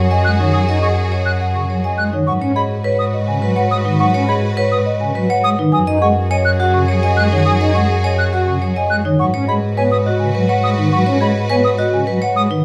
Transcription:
Already playing: F#2 F#4 G#4 C#5
0.10 D#5 G#5
0.24 G#3 F#6
0.39 D#3 D#4 C#5
0.53 F#3 G#5 D#6
0.68 D#4 D#5
0.82 G#4 F#5 C#6
1.12 C#5 D#5
1.25 F#6
1.41 F#5
1.54 C#3 C#6
1.69 F#3 C#5
1.84 D#5 G#5
1.98 G#3 F#6
2.13 D#3 D#4 C#5
2.27 G#2 F#3 F#4 B4 F#5 C#6
2.41 C#4 C#5
2.55 G#4 D#5 B5
2.84 B4 C#5
2.99 D#6
3.14 D#5
3.28 C#3 G#5
3.42 F#3 B4
3.56 C#5 F#5
3.71 G#3 D#6
3.85 D#3 D#4 B4
3.99 F#3 F#5 C#6
4.14 C#4 C#5
4.28 G#4 D#5 B5
4.57 B4 C#5
4.72 D#6
4.86 D#5
5.01 C#3 G#5
5.15 F#3 B4
5.30 C#5 F#5
5.44 G#3 D#6
5.58 D#3 D#4 B4
5.72 F#2 F#3 F#4 G#4 G#5 D#6
5.87 D#4 D#5
6.02 G#3 G#4 F#5 C#6
6.30 C#5 D#5 G#5
6.45 F#6
6.59 F#4 F#5
6.74 C#3 C#6
6.88 F#3 C#5
7.03 D#5 G#5
7.17 G#3 F#6
7.32 D#3 D#4 C#5
7.46 F#3 G#5 D#6
7.60 D#4 D#5
7.74 G#3 G#4 F#5 C#6
8.03 C#5 D#5 G#5
8.18 F#6
8.33 F#4 F#5
8.47 C#3 C#6
8.62 F#3 C#5
8.76 D#5 G#5
8.90 G#3 F#6
9.04 D#3 D#4 C#5
9.19 G#2 F#3 F#4 B4 F#5 C#6
9.34 C#4 C#5
9.47 G#3 G#4 D#5 B5
9.77 B3 B4 C#5 G#5
9.91 D#6
10.06 F#4 D#5
10.19 C#3 G#5
10.35 F#3 B4
10.49 C#5 F#5
10.63 G#3 D#6
10.78 D#3 D#4 B4
10.92 F#3 F#5 C#6
11.07 C#4 C#5
11.21 G#3 G#4 D#5 B5
11.50 B3 B4 C#5 G#5
11.64 D#6
11.78 F#4 D#5
11.93 C#3 G#5
12.07 F#3 B4
12.22 C#5 F#5
12.36 G#3 D#6
12.50 D#3 D#4 B4

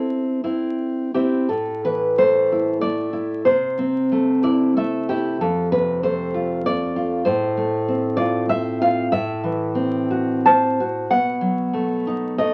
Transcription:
Already playing: C4 E4 A4
0.44 C4 E4
1.14 C4 E4 G4
1.49 A2 A4
1.85 E3 B4
2.18 A3 C5
2.52 E4
2.81 A3 D5
3.13 E4
3.45 C3 C5
3.78 C4
4.12 A3
4.43 E4 D5
4.77 A3 E5
5.09 E4 G4
5.41 F2 A4
5.72 C3 B4
6.03 A3 C5
6.34 F4
6.66 A3 D5
6.96 F4
7.25 A2 C5
7.57 A3
7.88 C4
8.17 F4 D5
8.49 C4 E5
8.81 F4 F5
9.12 A2 E5
9.44 E3
9.75 C4
10.10 F#4
10.46 C5 A5
10.80 F#4
11.11 B2 F#5
11.41 F#3
11.73 A3
12.07 D#4
12.38 A3 D#5

